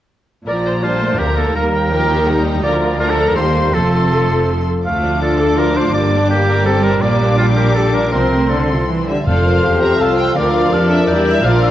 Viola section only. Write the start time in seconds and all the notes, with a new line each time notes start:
0.47 F3 A#4
0.66 C5
0.83 G3 C5
1.01 A3
1.18 A#3 A#4
1.55 G3 A#4
1.91 F3 A#4
2.09 D#3
2.27 G3 G4
2.64 F3 A#4
3.00 F3 A#4
3.18 A4
3.37 G3 G4
3.74 F3 A4
4.85 F3 A3
5.03 D4
5.21 F4
5.40 A4
5.57 F4
5.76 D4
5.94 G3 A#3
6.12 D4
6.31 G4
6.49 A#4
6.67 G4
6.86 D4
7.03 A#3
7.22 D4
7.39 G4
7.56 A#4
7.75 G4
7.94 D4
8.13 F3 C4
8.32 A3
8.51 C4
8.69 F4
8.89 E3
9.08 G3
9.27 F3 F4
9.64 G4
10.01 F4
10.37 F3 F4
10.73 D4
10.90 D4
11.08 G3 E4
11.44 F3 F4